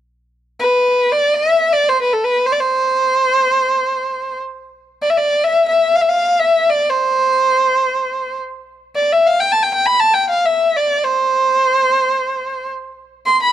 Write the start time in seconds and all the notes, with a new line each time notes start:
0.60 B4
1.12 D5
1.34 E5
1.73 D5
1.89 C5
2.02 B4
2.13 A4
2.24 B4
2.46 C5
2.52 D5
2.59 C5
5.02 D5
5.10 E5
5.17 D5
5.44 E5
5.69 E5
5.95 F5
6.01 E5
6.09 F5
6.40 E5
6.70 D5
6.89 C5
8.96 D5
9.12 E5
9.27 F5
9.40 G5
9.52 A5
9.63 G5
9.74 G5
9.86 B5
9.99 A5
10.14 G5
10.30 F5
10.46 E5
10.76 D5
11.04 C5
13.26 C6
13.43 B5